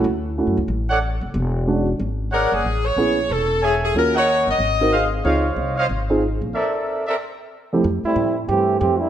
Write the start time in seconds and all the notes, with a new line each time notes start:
0.04 D2
0.38 A3 C#4 E4 F#4
0.47 F#2
0.57 C#2
0.68 A1
0.89 A4 C#5 D5 F#5
1.21 F1
1.34 E1
1.67 G#3 C#4 D4 F#4
1.99 G#1
2.32 G#4 A#4 C#5 D5 F#5
2.52 F#1 G#4
2.64 A1
2.85 C#5
2.96 A#1 B3 C#4 E4 G#4
3.29 E1 A4
3.62 G#4 A4 C#5 E5 G#5
3.84 G#4
3.95 D#2 C#4 F4 F#4 A#4
4.14 A#4 C#5 D#5 F#5
4.47 G1 D#5
4.59 G#1
4.81 C4 D#4 F#4 A#4
4.92 G#4 C5 D#5 F5
5.25 C#2 C4 D#4 F4 G#4 C5 C#5 D#5 F5
5.56 C2
5.77 C5 C#5 D#5 F5
5.89 G#1
6.10 C4 D#4 F4 G#4
6.42 A#1
6.55 C4 A4 A#4 D5 E5
7.07 C4 A4 A#4 D5 E5
7.73 F2 A3 C4 E4 G4
7.84 F2
8.04 G3 A3 C4 E4, muted upright bass stroke
8.16 A2
8.48 G2 E3 A3 C4 G4
8.79 F2 E3 A3 C4 G4
9.00 G3 A#3 D4 E4